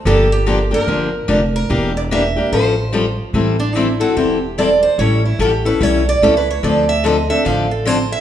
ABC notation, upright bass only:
X:1
M:4/4
L:1/8
Q:"Swing" 1/4=146
K:Gdor
V:1 name="Upright bass" clef=bass
G,,,4 G,,,2 F,,,2 | E,,,4 A,,,4 | [K:Am] A,,,4 E,,,4 | A,,,2 A,,,2 B,,,2 ^C,,2 |
D,,4 A,,,4 |]